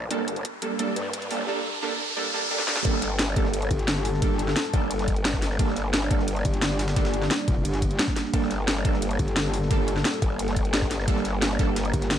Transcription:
Already playing: G3 A#3 A4, riser
0.11 G1 G3 A#3 D4 A4, kick, closed hi-hat
0.28 closed hi-hat
0.36 closed hi-hat
0.45 kick, closed hi-hat
0.62 G3 A#3 D4 A4, closed hi-hat
0.79 G3 A#3 D4 A4, kick, closed hi-hat
0.96 G2, closed hi-hat
1.13 kick, closed hi-hat
1.22 closed hi-hat
1.31 G1 G3 A#3 D4 A4, open hi-hat
1.48 G3 A#3 D4 A4
1.82 G3 A#3 D4 A4
2.16 G3 A#3 D4 A4
2.33 G3 A#3 D4 A4
2.51 G3 A#3 D4 A4
2.59 snare
2.68 G3 A#3 D4 A4, snare
2.76 snare
2.85 G1 G3 A#3 D4 A4, kick, closed hi-hat, ride
2.94 snare
3.02 snare, closed hi-hat, ride
3.19 snare, closed hi-hat, ride
3.36 G3 A#3 D4 A4, kick, closed hi-hat, ride
3.45 snare
3.54 closed hi-hat, ride
3.62 closed hi-hat
3.71 G1, kick, closed hi-hat, ride
3.79 closed hi-hat
3.88 snare, closed hi-hat, ride
3.96 snare
4.05 open hi-hat, ride
4.14 snare
4.22 G1 G3 A#3 D4 A4, kick, closed hi-hat, ride
4.39 closed hi-hat, ride
4.48 snare
4.56 snare, closed hi-hat, ride
4.65 closed hi-hat
4.74 G1 G3 A#3 D4 A4, kick, closed hi-hat, ride
4.91 closed hi-hat, ride
4.99 snare, closed hi-hat
5.08 kick, closed hi-hat, ride
5.16 closed hi-hat
5.25 snare, closed hi-hat, ride
5.34 kick, snare
5.42 snare, open hi-hat, ride
5.51 snare
5.59 G1 G3 A#3 D4 A4, kick, closed hi-hat, ride
5.68 snare
5.76 snare, closed hi-hat, ride
5.94 snare, closed hi-hat, ride
6.11 G3 A#3 D4 A4, kick, closed hi-hat, ride
6.19 snare
6.28 closed hi-hat, ride
6.36 closed hi-hat
6.45 G1, kick, closed hi-hat, ride
6.54 closed hi-hat
6.62 snare, closed hi-hat, ride
6.71 snare
6.79 snare, open hi-hat, ride
6.88 snare, ride
6.96 G1 G3 A#3 D4 A4, kick, snare, closed hi-hat, ride
7.05 snare, ride
7.14 closed hi-hat, ride
7.22 snare
7.31 snare, closed hi-hat, ride
7.39 closed hi-hat
7.48 F1, kick, closed hi-hat, ride
7.65 G1, closed hi-hat, ride
7.74 snare, closed hi-hat
7.82 kick, closed hi-hat, ride
7.91 closed hi-hat
7.99 snare, closed hi-hat, ride
8.08 kick, snare
8.16 snare, open hi-hat, ride
8.25 snare
8.33 G1 G3 A#3 D4 A4, kick, closed hi-hat, ride
8.42 snare
8.51 snare, closed hi-hat, ride
8.68 snare, closed hi-hat, ride
8.85 G3 A#3 D4 A4, kick, closed hi-hat, ride
8.94 snare
9.02 closed hi-hat, ride
9.11 closed hi-hat
9.19 G1, kick, closed hi-hat, ride
9.28 closed hi-hat
9.36 snare, closed hi-hat, ride
9.45 snare
9.54 open hi-hat, ride
9.62 snare
9.71 G1 G3 A#3 D4 A4, kick, closed hi-hat, ride
9.88 closed hi-hat, ride
9.96 snare
10.05 snare, closed hi-hat, ride
10.14 closed hi-hat
10.22 G1, kick, closed hi-hat, ride
10.39 closed hi-hat, ride
10.48 snare, closed hi-hat
10.56 kick, closed hi-hat, ride
10.65 closed hi-hat
10.74 snare, closed hi-hat, ride
10.82 kick, snare
10.91 snare, open hi-hat, ride
10.99 snare
11.08 G1 G3 A#3 D4 A4 A#4, kick, closed hi-hat, ride
11.16 snare
11.25 snare, closed hi-hat, ride
11.42 snare, closed hi-hat, ride
11.59 G3 A#3 D4 A4, kick, snare, closed hi-hat, ride
11.76 snare, closed hi-hat, ride
11.85 closed hi-hat
11.94 G1, kick, closed hi-hat, ride
12.02 snare, closed hi-hat
12.11 snare, closed hi-hat, ride

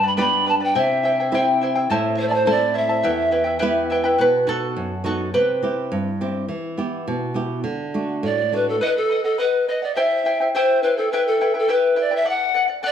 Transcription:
Already playing: G2
0.03 B4 D5 B5
0.17 B3 D4 G4 B4 D5 G5 B5
0.46 B4 D5 G5 A5 B5
0.60 B4 D5 G5 B5
0.75 C3 E4 G4 C5 E5 G5
1.03 E4 C5 E5 G5
1.20 E4 C5 G5
1.32 C4 E4 G4 C5 E5 G5
1.37 G5
1.61 E4 C5 E5 G5
1.75 E4 C5 G5
1.90 A2 E4 A4 C5 E5 A5
2.17 E4 C5 E5 A5
2.28 D5 A5
2.32 E4 C5
2.46 C4 E4 A4 C5 E5 A5
2.50 D5
2.74 E4 C5 E5 A5
2.89 E4 C5 A5
3.03 E2 E4 G4 B4 E5 G5
3.31 E4 B4 E5 G5
3.44 E4 B4 G5
3.59 B3 E4 G4 B4 E5 G5
3.90 E4 B4 E5 G5
4.04 E4 B4 G5
4.18 B2 F#4 B4
4.47 B3 D#4 F#4 A4
4.76 F#2
5.04 B3 D#4 F#4 A4
5.34 C3 G4 B4
5.62 C4 E4 G4
5.92 G2
6.21 C4 E4 G4
6.49 E3
6.78 B3 E4 G4
7.08 B2
7.34 B3 E4 G4
7.64 D3
7.94 A3 D4 F#4
8.23 A2 D5
8.52 A3 D4 F#4 B4
8.69 A4
8.81 B4 D#5 F#5
8.97 A4
9.09 B4 D#5 F#5
9.24 A4 D#5 F#5
9.38 B4 D#5 F#5
9.68 B4 D#5 F#5
9.82 D5 D#5 F#5
9.94 E4 G4 C5 E5 G5
10.25 E4 C5 E5 G5
10.40 E4 C5 G5
10.55 E4 G4 C5 E5 G5
10.82 E4 B4 C5 E5 G5
10.97 E4 A4 C5 G5
11.11 E4 G4 B4 E5 G5
11.27 A4
11.41 E4 B4 E5 G5
11.54 E4 B4 G5
11.58 A4
11.68 E4 G4 B4 E5 G5
11.96 E4 B4 E5 G5
12.00 D5
12.11 E4 B4 G5
12.16 E5
12.24 A4 D5 F#5
12.29 F#5
12.54 A4 D5 F#5
12.68 D5 F#5
12.83 A4 D5 F#5

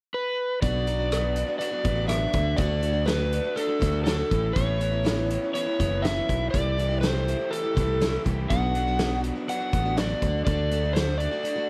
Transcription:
0.14 B4
0.62 B1 B2 F#3 B3 D4 F#4 D5, kick, closed hi-hat
0.86 F#3 B3 D4 F#4, closed hi-hat
0.99 B3 D4 F#4
1.11 B2 F#3 B3 D4 F#4, cross-stick, closed hi-hat
1.23 B3 D4 F#4
1.36 D4, closed hi-hat
1.47 B3 D4 F#4
1.59 F#3 B3 D4 F#4 D5, closed hi-hat
1.71 B3 D4 F#4
1.83 A1 F#3 B3 D4 F#4, kick, closed hi-hat
1.96 B3 D4 F#4
2.07 B2 F#3 B3 D4 F#4 E5, cross-stick, closed hi-hat
2.33 D2 D3 A3 D4 F#4, kick, closed hi-hat
2.57 D2 D3 A3 D4 F#4 D5, kick, closed hi-hat
2.81 D3 A3 D4 F#4, closed hi-hat
2.93 A3 D4 F#4
3.05 D3 A3 D4 F#4 B4, snare, closed hi-hat
3.18 A3 D4 F#4
3.33 D4, closed hi-hat
3.43 A3 D4 F#4
3.55 D3 A3 D4 F#4 A4, closed hi-hat
3.67 A3 D4 F#4
3.79 D2 D3 A3 D4 F#4, kick, closed hi-hat
3.92 A3 D4 F#4
4.04 D3 A3 D4 F#4 A4, snare, closed hi-hat
4.30 A1 A2 E3 B3 C#4 E4, kick, closed hi-hat
4.53 A1 A2 E3 B3 C#4 E4 C#5, kick, closed hi-hat
4.80 E3 B3 C#4 E4, closed hi-hat
4.91 B3 C#4 E4
5.03 A2 E3 B3 C#4 E4, snare, closed hi-hat
5.17 B3 C#4 E4
5.30 C#4, closed hi-hat
5.42 B3 C#4 E4
5.54 E3 B3 C#4 E4 C#5, closed hi-hat
5.67 B3 C#4 E4
5.79 F#1 E3 B3 C#4 E4, kick, closed hi-hat
5.91 B3 C#4 E4
6.02 A2 E3 B3 C#4 E4 E5, snare, closed hi-hat
6.28 B1 E3 B3 C#4 E4, kick, closed hi-hat
6.51 C2 C3 E3 A3 E4 G4 D5, kick, closed hi-hat
6.77 E3 A3 E4 G4, closed hi-hat
6.89 A3 E4 G4
7.01 C3 E3 A3 E4 G4 C5, snare, closed hi-hat
7.27 E4, closed hi-hat
7.39 A3 E4 G4
7.51 E3 A3 E4 G4 A4, closed hi-hat
7.63 A3 E4 G4
7.75 C2 E3 A3 E4 G4, kick, closed hi-hat
7.87 A3 E4 G4
8.00 C3 E3 A3 E4 G4, snare, closed hi-hat
8.24 C2 E3 A3 E4 G4, kick, closed hi-hat
8.50 B1 B2 F#3 B3 D4 F#4 F#5, kick, closed hi-hat
8.74 F#3 B3 D4 F#4, closed hi-hat
8.87 B3 D4 F#4
8.99 B2 F#3 B3 D4 F#4, snare, closed hi-hat
9.24 D4, closed hi-hat
9.35 B3 D4 F#4
9.48 F#3 B3 D4 F#4 F#5, closed hi-hat
9.60 B3 D4 F#4
9.71 A1 F#3 B3 D4 F#4, kick, closed hi-hat
9.85 B3 D4 F#4
9.97 B2 F#3 B3 D4 F#4 D5, snare, closed hi-hat
10.22 D2 D3 A3 D4 F#4, kick, closed hi-hat
10.45 D2 D3 A3 D4 F#4 D5, kick, closed hi-hat
10.71 D3 A3 D4 F#4, closed hi-hat
10.83 A3 D4 F#4
10.93 D3 A3 D4 F#4 C5, snare, closed hi-hat
11.07 A3 D4 F#4
11.18 D4 D5, closed hi-hat
11.31 A3 D4 F#4
11.43 D3 A3 D4 F#4, closed hi-hat
11.56 A3 D4 F#4

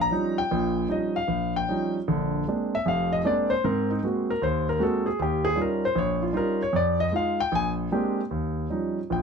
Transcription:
0.01 A#5
0.11 F3 G3 C#4 D#4
0.38 G5
0.51 A#1 A#2
0.88 F3 G3 C#4 D#4 D#5
1.16 F5
1.28 A#1
1.56 G5
1.69 F3 G3 C#4 D#4
2.08 A#1 D3
2.48 G#3 A#3 C4 D4
2.75 E5
2.86 F1 F2 F5
3.12 D#5
3.25 G#3 A#3 C4 D4 D5
3.50 C5
3.64 G#2 C4 A#4
3.90 D#4
4.03 G#3 A#3 C4 F#4
4.30 A#4
4.42 D#2 C5
4.69 A#4
4.79 G#3 A#3 C4 F#4 A4
5.06 G#4
5.19 D#2 G4
5.45 G#4
5.56 G3 C#4 D#4 F4
5.62 A#4
5.85 C5
5.95 A#1 C#5
6.22 F4
6.33 G3 C#4 D#4 F4
6.37 A#4
6.63 C#5
6.73 F2 D5
7.00 D#5
7.12 G#3 D#4 F4 F5
7.40 G5
7.52 A#1 G#5
7.92 G#3 A#3 C4 D4 G4
8.31 D#2
8.70 F3 G3 C#4 D#4
9.10 A#1 A#2 G5

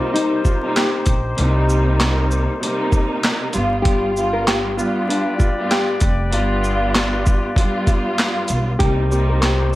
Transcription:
Already playing: C3 G3 A#3 D#4 F4 G4 C5
0.14 D#4, closed hi-hat
0.45 F4, kick, shaker
0.62 C3 G3 A#3 D#4
0.76 G4, snare, clap, closed hi-hat
1.06 A#1, kick, closed hi-hat, shaker
1.37 C2 C3 G3 A#3 D#4, closed hi-hat
1.69 shaker
2.00 snare, clap, closed hi-hat
2.31 shaker
2.61 C3 G3 A#3 D#4, closed hi-hat
2.92 kick, shaker
3.23 snare, clap, closed hi-hat
3.52 G1 G2 G3 B3 F4, closed hi-hat, shaker
3.82 G2 G3 B3 F4 G4, kick, closed hi-hat
4.16 G2 G3 B3 F4, shaker
4.33 A#4
4.47 G4, snare, clap, closed hi-hat
4.76 G2 G3 B3 F4 G4 B4 D5, shaker
5.09 D4, closed hi-hat
5.38 F4, kick, shaker
5.58 G2 G3 B3 F4
5.71 G4, snare, clap, closed hi-hat
6.00 F1, kick, closed hi-hat, shaker
6.31 G1 G2 G3 B3 F4, closed hi-hat
6.64 shaker
6.95 snare, clap, closed hi-hat
7.26 kick, shaker
7.56 G2 G3 B3 F4, kick, closed hi-hat
7.87 kick, closed hi-hat, shaker
8.18 snare, clap, closed hi-hat
8.48 B1, closed hi-hat, shaker
8.79 C2 C3 G3 A#3 D#4 G4 C5, kick, closed hi-hat
8.83 D#4
9.09 C3 G3 A#3 D#4, shaker
9.29 A#4
9.42 G4, snare, clap, closed hi-hat

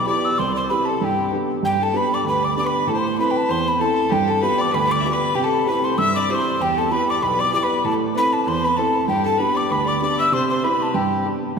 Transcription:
0.07 B3 E4 G4 D5 D6
0.25 E6
0.38 C2 C5 C6
0.53 D5 C6
0.58 C5
0.69 C4 E4 G4 B4 B5
0.85 A4 A5
1.01 G2 G4 G5 A5
1.32 B3 D4 G4
1.63 G2 G4 G5
1.82 A4 A5
1.93 B3 D4 G4 B4 B5
2.13 D5 D6
2.24 D2 B4 B5
2.43 D5 D6
2.56 B3 D4 G4 D5 D6
2.65 B4 B5
2.87 A2 A4 A5
2.94 C5 C6
3.18 C4 E4 A4 B4 B5
3.31 G5
3.37 A5
3.49 E2 C5 C6
3.68 B5
3.79 C4 E4 A4 A5
4.10 G2 G4 G5
4.27 A4 A5
4.42 B3 F4 G4 B4 B5
4.58 D5 D6
4.72 D2 B4 B5
4.88 D5 D6
5.00 D5 E5
5.05 B3 F4 G4 D6
5.11 B4 B5
5.35 C3 G4 G5
5.43 A4 A5
5.66 C4 E4 G4 B4 B5
5.84 C5 C6
5.98 G2 E5 E6
6.15 D5 D6
6.29 C4 E4 G4 C5 D6
6.35 C6
6.60 E2 G4 G5
6.76 A4 A5
6.91 B3 E4 G4 B4 B5
7.10 D5 D6
7.22 B1 B4 B5
7.39 D5 D6
7.53 B3 E4 G4 D5 D6
7.63 B4 B5
7.84 A2 A4 A5
8.15 C4 E4 A4 B4 B5
8.33 A5
8.47 E2 C5 C6
8.63 B4 B5
8.77 C4 E4 A4 A5
9.08 G2 G4 G5
9.24 A4 A5
9.38 B3 D4 G4 B4 B5
9.55 D5 D6
9.70 D2 B4 B5
9.86 D5 D6
10.01 B3 D4 G4 D5 D6
10.19 E5 E6
10.32 C3 C5 C6
10.50 C5 C6
10.63 C4 E4 G4 B4 B5
10.82 A5
10.94 G2 G4 G5
11.26 B3 D4 G4

